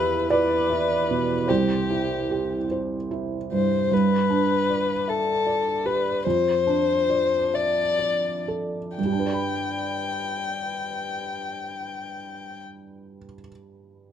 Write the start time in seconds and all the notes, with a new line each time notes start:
Already playing: E2 E4 G4 B4 E5
0.30 B4 D5
0.70 E4
1.10 B2
1.48 C2 G4 C5
1.90 E4
2.31 G4
2.71 C5
3.11 E4
3.52 G2 C5
3.91 G2 B4
4.30 D4
4.69 D5
5.08 A4 E5
5.47 D5
5.85 G4 B4
6.26 F2 C5
6.67 D4
7.10 D5
7.54 D5 E5
7.99 D5
8.48 A4
8.97 G2 G5
9.05 G3
9.12 D4
9.19 B4
9.26 D5
9.33 B5